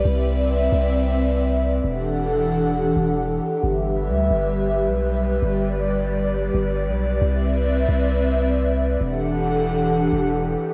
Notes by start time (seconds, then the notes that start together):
Already playing: B4 D5
0.05 C2 C4 E5
0.72 C2
1.84 E1 E3 D4 G4 A4 F#5
2.96 E1
3.63 G1 G3 B4 E5
4.08 D2
4.30 G1
4.86 B1
5.42 G1 D5
6.54 G1
6.88 B1
7.21 C2 C4 B4 E5
7.89 C2
9.01 E1 E3 D4 G4 A4 F#5
10.12 E1